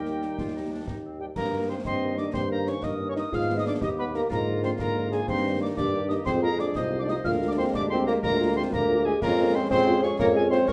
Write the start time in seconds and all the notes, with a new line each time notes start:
Already playing: D#2 D#3 G3 A#3 D#4 G4 A#4 G5
0.05 snare
0.22 D#4, snare
0.38 D#2 F4, concert bass drum, snare
0.55 D#4
0.71 D4
0.87 D#2 D#4, concert bass drum, snare
1.04 C4
1.19 G3 D4 G4 G5
1.35 G2 D#3 A#3 A#4 A#5, concert bass drum, snare, crash
1.52 G3 A#3 D#4
1.69 G3 A#3 C4 D#4 C5 C6
1.85 G2 C4 C5 D#5 C6, concert bass drum, snare
2.02 G3 A#3 D#4
2.17 G3 A#3 D4 D#4 D5 D6, snare
2.33 G2 C4 C5 C6, concert bass drum, snare
2.50 A#3 C#4 D#4 A#4 A#5
2.67 A#3 C#4 D#4 C#5 C#6, snare
2.83 G2 D#4 A#4 D#5 D#6, concert bass drum, snare
3.00 A#3 C#4 D#4
3.08 C#4 C#5 C#6
3.16 A#3 C#4 D#4 D#5 D#6, snare
3.32 G#2 D#3 B3 F4 G#4 F5 F6, concert bass drum, snare
3.51 G#3 B3 D#4
3.57 D#4 D#5 D#6
3.65 G#3 B3 D4 D#4 D5 D6
3.81 D#2 D#4 G4 D#5 D#6, concert bass drum, snare
3.98 G#3 B3 D#4 B4 B5
4.14 G#3 A#3 B3 D#4 A#4 A#5, snare
4.29 G#2 D3 A#3 F4 A#4 A#5, concert bass drum, snare
4.47 F3 A#3 D4
4.63 F3 A#3 C4 D4 C5 C6, snare
4.78 G#2 A#3 A#4 A#5, concert bass drum, snare
4.96 F3 A#3 D4
5.10 F3 G#3 A#3 D4 G#4 G#5, snare
5.27 G2 D#3 C4 D#4 C5 C6, concert bass drum, snare, crash
5.43 G3 A#3 D#4
5.59 G3 A#3 D4 D#4 D5 D6
5.76 G2 D4 G4 D5 D6, concert bass drum, snare
5.93 G3 A#3 D#4
6.08 G3 A#3 D#4 D#5 D#6, snare
6.25 F2 F3 G#3 C4 G#4 C5 C6, concert bass drum, snare
6.42 G#3 A#3 C4 F4 A#4 A#5
6.58 G#3 C4 D4 F4 D5 D6, snare
6.75 C2 D#4 C5 D#5 D#6, concert bass drum, snare
6.91 G#3 C4 F4
6.99 D4 D5 D6
7.07 G#3 C4 D#4 F4 D#6, snare
7.11 D#5
7.24 D2 G#3 A#3 F4 A#4 F5 F6, concert bass drum, snare
7.41 G#3 A#3 F4
7.48 D4 D5 D6
7.58 G#3 A#3 C4 F4 C5 C6
7.73 D2 D4 G4 D5 D6, concert bass drum, snare
7.90 G#3 A#3 C4 F4 C5 C6
8.06 G#3 A#3 F4 A#4 A#5, snare
8.23 D2 A#3 F4 A#4 A#5, concert bass drum, snare
8.40 G#3 A#3 F4
8.56 G#3 A#3 C4 F4 C5 C6
8.73 D2 A#3 G4 A#4 A#5, concert bass drum, snare
8.89 G#3 A#3 F4
9.05 G#3 A#3 F4 G#4 G#5
9.22 F2 G#3 A#3 C#4 F4 A#4 A#5, concert bass drum, snare, crash
9.38 G#3 C#4 F4
9.53 G#3 C4 C#4 F4 C5 C6
9.70 F2 C4 G#4 C5 C6, concert bass drum, snare
9.86 G#3 C#4 F4
10.01 G#3 C#4 F4 C#5 C#6, snare
10.19 F2 A#3 A#4 C#5 A#5, concert bass drum, snare
10.34 G#3 C#4 F4 G#4 G#5
10.50 G#3 C4 C#4 F4 C5 C6, snare
10.67 F2 C#4 A#4 C#6, concert bass drum, snare